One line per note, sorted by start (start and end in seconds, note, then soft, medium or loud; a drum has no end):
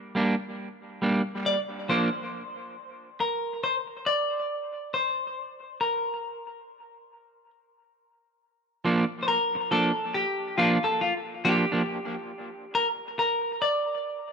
0.15 0.34 G3 medium
0.15 0.34 A#3 medium
0.15 0.35 D4 medium
1.02 1.21 G3 medium
1.02 1.21 A#3 medium
1.02 1.22 D4 medium
1.46 1.58 D5 loud
1.89 2.08 F3 medium
1.89 2.08 A#3 medium
1.89 2.09 D4 medium
1.89 2.72 C5 medium
3.20 3.63 A#4 medium
3.64 3.75 C5 medium
4.06 4.89 D5 loud
4.94 5.77 C5 medium
5.81 7.50 A#4 medium
8.85 9.03 F3 medium
8.85 9.04 A#3 medium
8.85 9.04 D4 medium
9.23 9.27 C5 medium
9.28 9.71 A#4 medium
9.55 muted clean electric guitar stroke soft
9.71 9.90 F3 medium
9.71 9.91 A#3 medium
9.71 9.91 D4 loud
9.71 10.16 A4 medium
10.14 10.55 G4 medium
10.58 10.77 F3 medium
10.58 10.77 A#3 medium
10.58 10.78 D4 loud
10.58 10.85 F4 medium
10.84 11.02 A4 medium
11.01 11.13 F4 medium
11.45 11.64 F3 medium
11.45 11.64 A#3 medium
11.45 11.64 D4 medium
11.45 12.79 G4 loud
11.72 11.82 F3 medium
11.72 11.82 A#3 medium
11.72 11.81 D4 medium
12.75 12.87 A#4 loud
13.19 13.61 A#4 medium
13.62 14.33 D5 loud